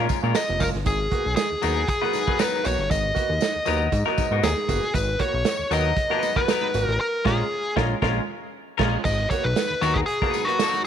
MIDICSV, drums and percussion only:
0, 0, Header, 1, 2, 480
1, 0, Start_track
1, 0, Tempo, 511945
1, 811, Time_signature, 4, 2, 24, 8
1, 10191, End_track
2, 0, Start_track
2, 0, Title_t, "Drums"
2, 84, Note_on_c, 9, 54, 51
2, 90, Note_on_c, 9, 42, 58
2, 92, Note_on_c, 9, 36, 95
2, 95, Note_on_c, 9, 38, 31
2, 178, Note_off_c, 9, 54, 0
2, 184, Note_off_c, 9, 42, 0
2, 186, Note_off_c, 9, 36, 0
2, 189, Note_off_c, 9, 38, 0
2, 325, Note_on_c, 9, 38, 119
2, 325, Note_on_c, 9, 42, 81
2, 328, Note_on_c, 9, 54, 86
2, 419, Note_off_c, 9, 38, 0
2, 419, Note_off_c, 9, 42, 0
2, 422, Note_off_c, 9, 54, 0
2, 458, Note_on_c, 9, 38, 32
2, 552, Note_off_c, 9, 38, 0
2, 565, Note_on_c, 9, 54, 63
2, 569, Note_on_c, 9, 36, 83
2, 572, Note_on_c, 9, 46, 71
2, 659, Note_off_c, 9, 54, 0
2, 663, Note_off_c, 9, 36, 0
2, 666, Note_off_c, 9, 46, 0
2, 691, Note_on_c, 9, 38, 33
2, 785, Note_off_c, 9, 38, 0
2, 803, Note_on_c, 9, 42, 96
2, 809, Note_on_c, 9, 36, 115
2, 811, Note_on_c, 9, 54, 55
2, 897, Note_off_c, 9, 42, 0
2, 903, Note_off_c, 9, 36, 0
2, 905, Note_off_c, 9, 54, 0
2, 1046, Note_on_c, 9, 42, 77
2, 1048, Note_on_c, 9, 36, 88
2, 1139, Note_off_c, 9, 42, 0
2, 1141, Note_off_c, 9, 36, 0
2, 1280, Note_on_c, 9, 42, 80
2, 1283, Note_on_c, 9, 54, 71
2, 1286, Note_on_c, 9, 38, 117
2, 1374, Note_off_c, 9, 42, 0
2, 1377, Note_off_c, 9, 54, 0
2, 1380, Note_off_c, 9, 38, 0
2, 1523, Note_on_c, 9, 54, 60
2, 1527, Note_on_c, 9, 42, 70
2, 1617, Note_off_c, 9, 54, 0
2, 1621, Note_off_c, 9, 42, 0
2, 1764, Note_on_c, 9, 42, 88
2, 1766, Note_on_c, 9, 36, 91
2, 1767, Note_on_c, 9, 54, 40
2, 1858, Note_off_c, 9, 42, 0
2, 1860, Note_off_c, 9, 36, 0
2, 1861, Note_off_c, 9, 54, 0
2, 1900, Note_on_c, 9, 38, 36
2, 1994, Note_off_c, 9, 38, 0
2, 2000, Note_on_c, 9, 54, 47
2, 2012, Note_on_c, 9, 42, 67
2, 2017, Note_on_c, 9, 38, 36
2, 2094, Note_off_c, 9, 54, 0
2, 2106, Note_off_c, 9, 42, 0
2, 2111, Note_off_c, 9, 38, 0
2, 2135, Note_on_c, 9, 36, 94
2, 2229, Note_off_c, 9, 36, 0
2, 2242, Note_on_c, 9, 54, 91
2, 2247, Note_on_c, 9, 38, 113
2, 2247, Note_on_c, 9, 42, 88
2, 2336, Note_off_c, 9, 54, 0
2, 2341, Note_off_c, 9, 38, 0
2, 2341, Note_off_c, 9, 42, 0
2, 2381, Note_on_c, 9, 38, 38
2, 2475, Note_off_c, 9, 38, 0
2, 2482, Note_on_c, 9, 54, 63
2, 2491, Note_on_c, 9, 42, 76
2, 2576, Note_off_c, 9, 54, 0
2, 2584, Note_off_c, 9, 42, 0
2, 2614, Note_on_c, 9, 38, 37
2, 2708, Note_off_c, 9, 38, 0
2, 2727, Note_on_c, 9, 36, 106
2, 2727, Note_on_c, 9, 42, 94
2, 2727, Note_on_c, 9, 54, 54
2, 2821, Note_off_c, 9, 36, 0
2, 2821, Note_off_c, 9, 42, 0
2, 2821, Note_off_c, 9, 54, 0
2, 2957, Note_on_c, 9, 54, 37
2, 2965, Note_on_c, 9, 36, 77
2, 2969, Note_on_c, 9, 42, 81
2, 3051, Note_off_c, 9, 54, 0
2, 3059, Note_off_c, 9, 36, 0
2, 3062, Note_off_c, 9, 42, 0
2, 3194, Note_on_c, 9, 54, 71
2, 3204, Note_on_c, 9, 42, 82
2, 3209, Note_on_c, 9, 38, 105
2, 3288, Note_off_c, 9, 54, 0
2, 3297, Note_off_c, 9, 42, 0
2, 3303, Note_off_c, 9, 38, 0
2, 3431, Note_on_c, 9, 54, 55
2, 3444, Note_on_c, 9, 42, 74
2, 3525, Note_off_c, 9, 54, 0
2, 3538, Note_off_c, 9, 42, 0
2, 3677, Note_on_c, 9, 42, 85
2, 3678, Note_on_c, 9, 36, 91
2, 3680, Note_on_c, 9, 54, 42
2, 3771, Note_off_c, 9, 36, 0
2, 3771, Note_off_c, 9, 42, 0
2, 3774, Note_off_c, 9, 54, 0
2, 3811, Note_on_c, 9, 38, 33
2, 3904, Note_off_c, 9, 38, 0
2, 3916, Note_on_c, 9, 54, 48
2, 3920, Note_on_c, 9, 42, 60
2, 3921, Note_on_c, 9, 36, 92
2, 3925, Note_on_c, 9, 38, 30
2, 4009, Note_off_c, 9, 54, 0
2, 4014, Note_off_c, 9, 36, 0
2, 4014, Note_off_c, 9, 42, 0
2, 4019, Note_off_c, 9, 38, 0
2, 4158, Note_on_c, 9, 54, 80
2, 4159, Note_on_c, 9, 38, 121
2, 4159, Note_on_c, 9, 42, 82
2, 4252, Note_off_c, 9, 38, 0
2, 4252, Note_off_c, 9, 42, 0
2, 4252, Note_off_c, 9, 54, 0
2, 4287, Note_on_c, 9, 38, 36
2, 4380, Note_off_c, 9, 38, 0
2, 4396, Note_on_c, 9, 36, 92
2, 4397, Note_on_c, 9, 54, 55
2, 4398, Note_on_c, 9, 42, 83
2, 4489, Note_off_c, 9, 36, 0
2, 4491, Note_off_c, 9, 54, 0
2, 4492, Note_off_c, 9, 42, 0
2, 4523, Note_on_c, 9, 38, 37
2, 4617, Note_off_c, 9, 38, 0
2, 4633, Note_on_c, 9, 42, 108
2, 4637, Note_on_c, 9, 36, 112
2, 4643, Note_on_c, 9, 54, 45
2, 4727, Note_off_c, 9, 42, 0
2, 4730, Note_off_c, 9, 36, 0
2, 4737, Note_off_c, 9, 54, 0
2, 4870, Note_on_c, 9, 42, 76
2, 4874, Note_on_c, 9, 36, 75
2, 4964, Note_off_c, 9, 42, 0
2, 4968, Note_off_c, 9, 36, 0
2, 5106, Note_on_c, 9, 42, 82
2, 5111, Note_on_c, 9, 38, 114
2, 5118, Note_on_c, 9, 54, 76
2, 5200, Note_off_c, 9, 42, 0
2, 5205, Note_off_c, 9, 38, 0
2, 5212, Note_off_c, 9, 54, 0
2, 5354, Note_on_c, 9, 42, 66
2, 5359, Note_on_c, 9, 54, 62
2, 5447, Note_off_c, 9, 42, 0
2, 5453, Note_off_c, 9, 54, 0
2, 5591, Note_on_c, 9, 42, 82
2, 5594, Note_on_c, 9, 36, 95
2, 5685, Note_off_c, 9, 42, 0
2, 5688, Note_off_c, 9, 36, 0
2, 5729, Note_on_c, 9, 38, 33
2, 5823, Note_off_c, 9, 38, 0
2, 5837, Note_on_c, 9, 42, 64
2, 5838, Note_on_c, 9, 54, 50
2, 5842, Note_on_c, 9, 38, 34
2, 5931, Note_off_c, 9, 42, 0
2, 5932, Note_off_c, 9, 54, 0
2, 5936, Note_off_c, 9, 38, 0
2, 5966, Note_on_c, 9, 36, 95
2, 6060, Note_off_c, 9, 36, 0
2, 6079, Note_on_c, 9, 38, 114
2, 6079, Note_on_c, 9, 42, 88
2, 6081, Note_on_c, 9, 54, 89
2, 6172, Note_off_c, 9, 42, 0
2, 6173, Note_off_c, 9, 38, 0
2, 6175, Note_off_c, 9, 54, 0
2, 6210, Note_on_c, 9, 38, 36
2, 6304, Note_off_c, 9, 38, 0
2, 6320, Note_on_c, 9, 54, 63
2, 6325, Note_on_c, 9, 42, 75
2, 6413, Note_off_c, 9, 54, 0
2, 6419, Note_off_c, 9, 42, 0
2, 6442, Note_on_c, 9, 38, 36
2, 6536, Note_off_c, 9, 38, 0
2, 6801, Note_on_c, 9, 36, 100
2, 6801, Note_on_c, 9, 49, 78
2, 6806, Note_on_c, 9, 38, 108
2, 6895, Note_off_c, 9, 36, 0
2, 6895, Note_off_c, 9, 49, 0
2, 6899, Note_off_c, 9, 38, 0
2, 7282, Note_on_c, 9, 36, 100
2, 7285, Note_on_c, 9, 38, 104
2, 7376, Note_off_c, 9, 36, 0
2, 7378, Note_off_c, 9, 38, 0
2, 7522, Note_on_c, 9, 36, 115
2, 7525, Note_on_c, 9, 38, 115
2, 7616, Note_off_c, 9, 36, 0
2, 7619, Note_off_c, 9, 38, 0
2, 8242, Note_on_c, 9, 49, 82
2, 8245, Note_on_c, 9, 36, 98
2, 8246, Note_on_c, 9, 38, 102
2, 8335, Note_off_c, 9, 49, 0
2, 8338, Note_off_c, 9, 36, 0
2, 8340, Note_off_c, 9, 38, 0
2, 8483, Note_on_c, 9, 49, 90
2, 8487, Note_on_c, 9, 36, 112
2, 8489, Note_on_c, 9, 54, 51
2, 8577, Note_off_c, 9, 49, 0
2, 8580, Note_off_c, 9, 36, 0
2, 8583, Note_off_c, 9, 54, 0
2, 8725, Note_on_c, 9, 42, 82
2, 8726, Note_on_c, 9, 36, 81
2, 8727, Note_on_c, 9, 54, 37
2, 8819, Note_off_c, 9, 42, 0
2, 8820, Note_off_c, 9, 36, 0
2, 8820, Note_off_c, 9, 54, 0
2, 8961, Note_on_c, 9, 42, 77
2, 8967, Note_on_c, 9, 38, 111
2, 8972, Note_on_c, 9, 54, 75
2, 9055, Note_off_c, 9, 42, 0
2, 9060, Note_off_c, 9, 38, 0
2, 9066, Note_off_c, 9, 54, 0
2, 9212, Note_on_c, 9, 42, 69
2, 9212, Note_on_c, 9, 54, 60
2, 9306, Note_off_c, 9, 42, 0
2, 9306, Note_off_c, 9, 54, 0
2, 9337, Note_on_c, 9, 36, 84
2, 9431, Note_off_c, 9, 36, 0
2, 9450, Note_on_c, 9, 42, 78
2, 9544, Note_off_c, 9, 42, 0
2, 9581, Note_on_c, 9, 36, 95
2, 9584, Note_on_c, 9, 38, 32
2, 9675, Note_off_c, 9, 36, 0
2, 9678, Note_off_c, 9, 38, 0
2, 9691, Note_on_c, 9, 54, 52
2, 9697, Note_on_c, 9, 42, 63
2, 9785, Note_off_c, 9, 54, 0
2, 9791, Note_off_c, 9, 42, 0
2, 9828, Note_on_c, 9, 42, 54
2, 9922, Note_off_c, 9, 42, 0
2, 9933, Note_on_c, 9, 38, 118
2, 9933, Note_on_c, 9, 42, 89
2, 9935, Note_on_c, 9, 54, 89
2, 10026, Note_off_c, 9, 42, 0
2, 10027, Note_off_c, 9, 38, 0
2, 10028, Note_off_c, 9, 54, 0
2, 10067, Note_on_c, 9, 38, 37
2, 10070, Note_on_c, 9, 42, 43
2, 10161, Note_off_c, 9, 38, 0
2, 10164, Note_off_c, 9, 42, 0
2, 10191, End_track
0, 0, End_of_file